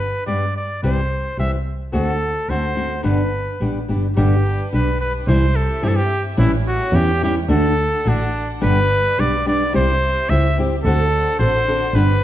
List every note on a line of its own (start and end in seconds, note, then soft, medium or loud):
0.00 0.23 B4 medium
0.26 0.83 G2 medium
0.26 0.44 G3 medium
0.26 0.44 B3 soft
0.26 0.44 D4 medium
0.26 0.44 G4 medium
0.26 0.53 D5 medium
0.57 0.82 D5 medium
0.83 1.19 C2 medium
0.83 1.00 C3 medium
0.83 1.00 E3 medium
0.83 1.00 G3 medium
0.83 1.00 C4 medium
0.83 1.00 G4 medium
0.83 1.35 C5 medium
1.38 1.94 C2 medium
1.38 1.55 E3 medium
1.38 1.55 G3 soft
1.38 1.56 C4 medium
1.38 1.56 G4 medium
1.38 1.52 E5 medium
1.92 2.30 D2 medium
1.92 2.10 D3 medium
1.92 2.10 A3 medium
1.92 2.10 C4 medium
1.92 2.10 F#4 medium
1.92 2.51 A4 medium
2.48 3.04 D2 medium
2.48 2.65 D3 medium
2.48 2.65 A3 medium
2.48 2.66 C4 medium
2.48 2.66 F#4 medium
2.48 3.03 C5 medium
2.75 2.92 D3 medium
2.75 2.93 A3 medium
2.75 2.93 C4 medium
2.75 2.93 F#4 medium
3.03 3.41 G1 medium
3.03 3.20 G2 medium
3.03 3.21 D3 medium
3.03 3.21 G3 medium
3.03 3.21 B3 medium
3.03 3.21 D4 medium
3.03 3.21 G4 medium
3.03 3.85 B4 medium
3.60 3.86 A1 medium
3.60 3.78 G3 medium
3.60 3.78 B3 medium
3.60 3.79 D4 medium
3.60 3.79 G4 medium
3.88 4.15 G1 medium
3.88 4.06 G3 medium
3.88 4.06 B3 soft
3.88 4.06 D4 soft
3.88 4.06 G4 medium
4.16 4.54 G1 medium
4.16 4.34 G2 medium
4.16 4.34 D3 medium
4.16 4.34 G3 medium
4.16 5.27 G3 medium
4.16 4.34 B3 medium
4.16 4.34 D4 medium
4.16 5.27 D4 medium
4.16 4.69 G4 medium
4.16 4.34 G4 medium
4.16 5.27 B4 medium
4.72 5.27 B1 medium
4.72 4.89 G3 medium
4.72 4.89 B3 medium
4.72 4.90 D4 medium
4.72 4.90 G4 medium
4.72 5.00 B4 medium
5.01 5.13 B4 medium
5.28 5.63 C2 loud
5.28 5.44 C3 medium
5.28 5.44 E3 medium
5.28 5.45 G3 medium
5.28 6.36 C4 medium
5.28 5.45 C4 medium
5.28 5.45 E4 medium
5.28 7.46 G4 medium
5.28 5.57 C5 medium
5.28 6.37 E5 medium
5.56 5.86 A4 medium
5.82 6.38 G2 medium
5.82 5.99 E3 medium
5.82 5.99 G3 medium
5.82 5.99 C4 medium
5.82 5.99 E4 medium
5.82 5.89 G4 loud
5.88 5.98 A4 medium
5.96 6.24 G4 loud
6.37 6.74 A1 loud
6.37 6.54 A2 medium
6.37 6.54 E3 medium
6.37 6.54 G3 medium
6.37 7.48 A3 medium
6.37 6.54 C#4 medium
6.37 6.54 E4 medium
6.37 6.52 E4 medium
6.37 7.48 C#5 medium
6.68 6.97 F#4 medium
6.92 7.49 E2 loud
6.92 7.09 E3 medium
6.92 7.10 G3 medium
6.92 7.10 C#4 medium
6.92 7.10 E4 medium
6.92 7.22 G4 loud
7.21 7.38 E3 medium
7.21 7.38 G3 medium
7.21 7.38 C#4 medium
7.21 7.39 E4 medium
7.21 7.36 G4 medium
7.48 7.86 D2 loud
7.48 7.65 D3 medium
7.48 7.66 A3 medium
7.48 7.66 D4 medium
7.48 9.73 D4 medium
7.48 7.66 F#4 medium
7.48 8.61 A4 medium
7.48 8.10 A4 loud
7.48 8.61 F#5 medium
8.05 8.62 A1 medium
8.05 8.22 D3 medium
8.05 8.22 A3 medium
8.05 8.23 D4 medium
8.05 8.49 D4 medium
8.05 8.23 F#4 medium
8.61 8.99 G1 medium
8.61 8.78 G2 medium
8.61 8.78 D3 medium
8.61 8.79 G3 medium
8.61 9.73 G3 medium
8.61 8.79 B3 medium
8.61 8.79 D4 medium
8.61 8.79 G4 medium
8.61 9.73 B4 medium
8.61 9.21 B4 loud
9.18 9.74 B1 medium
9.18 9.35 G3 medium
9.18 9.35 B3 medium
9.18 9.35 D4 medium
9.18 9.35 G4 medium
9.18 9.47 D5 loud
9.45 9.62 G3 medium
9.45 9.62 B3 medium
9.45 9.63 D4 medium
9.45 9.63 G4 medium
9.45 9.73 D5 medium
9.73 10.11 C2 medium
9.73 9.90 C3 medium
9.73 9.91 G3 medium
9.73 10.84 C4 medium
9.73 9.91 C4 medium
9.73 9.91 E4 medium
9.73 10.83 G4 medium
9.73 9.91 G4 medium
9.73 10.31 C5 loud
9.73 10.83 E5 medium
10.29 10.85 C#2 medium
10.29 10.46 G3 medium
10.29 10.47 C4 medium
10.29 10.47 E4 medium
10.29 10.47 G4 medium
10.29 10.58 E5 loud
10.58 10.74 G3 medium
10.58 10.74 C4 medium
10.58 10.75 E4 medium
10.58 10.75 G4 medium
10.84 11.21 D2 loud
10.84 11.02 D3 medium
10.84 11.02 C4 medium
10.84 12.24 D4 medium
10.84 11.02 F#4 medium
10.84 11.35 A4 loud
10.84 11.02 A4 medium
10.84 11.94 C5 medium
10.84 11.94 F#5 medium
11.39 11.93 A1 medium
11.39 11.56 D3 medium
11.39 11.56 C4 medium
11.39 11.56 F#4 medium
11.39 11.57 A4 medium
11.39 11.97 C5 loud
11.68 11.84 D3 medium
11.68 11.84 C4 medium
11.68 11.84 F#4 medium
11.68 11.84 A4 medium
11.94 12.24 G1 loud
11.94 12.11 G3 medium
11.94 12.24 G3 medium
11.94 12.12 B3 medium
11.94 12.12 D4 medium
11.94 12.24 B4 loud
11.94 12.24 B4 medium
11.94 12.12 B4 loud